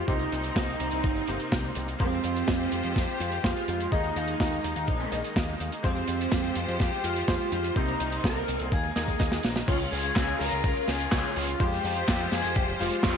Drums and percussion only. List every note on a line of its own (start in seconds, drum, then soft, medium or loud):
0.08 kick loud
0.08 closed hi-hat medium
0.19 closed hi-hat soft
0.32 closed hi-hat medium
0.44 closed hi-hat medium
0.56 kick loud
0.56 snare loud
0.56 closed hi-hat medium
0.68 closed hi-hat soft
0.80 closed hi-hat medium
0.91 closed hi-hat medium
1.04 kick loud
1.04 closed hi-hat medium
1.17 closed hi-hat soft
1.28 closed hi-hat medium
1.40 closed hi-hat medium
1.52 kick loud
1.52 snare loud
1.52 closed hi-hat medium
1.64 closed hi-hat soft
1.75 closed hi-hat medium
1.88 closed hi-hat medium
2.00 kick loud
2.00 closed hi-hat medium
2.12 closed hi-hat soft
2.24 closed hi-hat medium
2.37 closed hi-hat medium
2.48 kick loud
2.48 snare loud
2.48 closed hi-hat medium
2.61 closed hi-hat soft
2.72 closed hi-hat loud
2.84 closed hi-hat medium
2.96 kick loud
2.96 snare medium
2.96 closed hi-hat medium
3.08 closed hi-hat soft
3.20 closed hi-hat medium
3.32 closed hi-hat medium
3.44 kick loud
3.44 snare loud
3.44 closed hi-hat medium
3.57 closed hi-hat soft
3.68 closed hi-hat loud
3.80 closed hi-hat medium
3.92 kick loud
3.92 closed hi-hat medium
4.04 closed hi-hat soft
4.16 closed hi-hat medium
4.28 closed hi-hat medium
4.40 kick loud
4.40 snare loud
4.40 closed hi-hat medium
4.52 closed hi-hat soft
4.64 closed hi-hat loud
4.76 closed hi-hat medium
4.88 kick loud
4.88 closed hi-hat medium
5.00 closed hi-hat soft
5.12 closed hi-hat medium
5.24 closed hi-hat medium
5.36 kick loud
5.36 snare loud
5.36 closed hi-hat medium
5.48 closed hi-hat soft
5.60 closed hi-hat medium
5.72 closed hi-hat medium
5.84 kick loud
5.84 closed hi-hat medium
5.96 closed hi-hat soft
6.08 closed hi-hat loud
6.21 closed hi-hat medium
6.32 kick loud
6.32 snare loud
6.32 closed hi-hat medium
6.44 closed hi-hat soft
6.56 closed hi-hat loud
6.69 closed hi-hat medium
6.80 kick loud
6.80 snare medium
6.80 closed hi-hat medium
6.93 closed hi-hat soft
7.04 closed hi-hat medium
7.17 closed hi-hat medium
7.28 kick loud
7.28 snare loud
7.28 closed hi-hat medium
7.41 closed hi-hat soft
7.52 closed hi-hat medium
7.64 closed hi-hat medium
7.76 kick loud
7.76 closed hi-hat medium
7.88 closed hi-hat soft
8.00 closed hi-hat loud
8.12 closed hi-hat medium
8.24 kick loud
8.24 snare loud
8.24 closed hi-hat medium
8.36 closed hi-hat soft
8.48 closed hi-hat loud
8.59 closed hi-hat medium
8.72 kick loud
8.72 closed hi-hat medium
8.84 closed hi-hat soft
8.96 snare medium
8.96 closed hi-hat medium
9.08 kick medium
9.08 closed hi-hat medium
9.19 kick loud
9.19 snare medium
9.19 closed hi-hat medium
9.32 snare medium
9.32 closed hi-hat medium
9.43 snare medium
9.43 closed hi-hat medium
9.55 snare medium
9.55 closed hi-hat medium
9.68 kick loud
9.68 closed hi-hat medium
9.68 crash medium
9.68 cabasa medium
9.79 closed hi-hat medium
9.79 cabasa soft
9.92 open hi-hat loud
9.92 cabasa medium
10.04 closed hi-hat medium
10.04 cabasa soft
10.16 kick loud
10.16 snare loud
10.16 clap loud
10.16 closed hi-hat medium
10.16 cabasa medium
10.28 closed hi-hat soft
10.28 cabasa soft
10.41 open hi-hat loud
10.41 cabasa medium
10.52 closed hi-hat medium
10.52 cabasa soft
10.64 kick loud
10.64 closed hi-hat medium
10.64 cabasa medium
10.76 closed hi-hat soft
10.76 cabasa soft
10.88 snare medium
10.88 open hi-hat loud
10.88 cabasa medium
11.00 closed hi-hat medium
11.00 cabasa soft
11.12 kick loud
11.12 snare loud
11.12 clap loud
11.12 closed hi-hat medium
11.12 cabasa medium
11.24 closed hi-hat soft
11.24 cabasa soft
11.36 open hi-hat loud
11.36 cabasa medium
11.48 closed hi-hat medium
11.48 cabasa soft
11.60 kick loud
11.60 closed hi-hat medium
11.60 cabasa medium
11.72 open hi-hat medium
11.72 cabasa soft
11.83 open hi-hat loud
11.83 cabasa medium
11.96 closed hi-hat medium
11.96 cabasa soft
12.08 kick loud
12.08 snare loud
12.08 clap medium
12.08 closed hi-hat medium
12.08 cabasa medium
12.20 closed hi-hat soft
12.20 cabasa soft
12.32 snare medium
12.32 open hi-hat loud
12.32 cabasa medium
12.44 closed hi-hat medium
12.44 cabasa soft
12.55 kick loud
12.55 closed hi-hat medium
12.55 cabasa medium
12.68 closed hi-hat soft
12.68 cabasa soft
12.80 open hi-hat loud
12.80 cabasa medium
12.92 closed hi-hat medium
12.92 cabasa medium
13.03 kick loud
13.03 snare loud
13.03 clap medium
13.03 closed hi-hat medium
13.03 cabasa medium